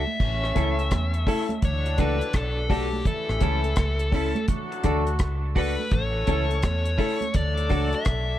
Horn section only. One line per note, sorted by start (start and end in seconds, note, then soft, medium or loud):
0.19 1.25 A2 medium
0.19 1.25 C#3 medium
0.19 1.25 E3 medium
0.19 1.25 C#4 medium
1.63 2.68 A2 medium
1.63 2.68 D3 medium
1.63 2.68 F#3 medium
1.63 2.68 D4 medium
3.05 4.11 C#3 medium
3.05 4.11 E3 medium
3.05 4.11 A3 medium
3.05 4.11 E4 medium
4.49 5.54 F#3 medium
4.49 5.54 A3 medium
4.49 5.54 D4 medium
4.49 5.54 F#4 medium
5.92 6.97 E3 medium
5.92 6.97 A3 medium
5.92 6.97 C#4 medium
5.92 6.97 A4 medium
7.36 8.39 F#3 medium
7.36 8.39 A3 medium
7.36 8.39 D4 medium
7.36 8.39 A4 medium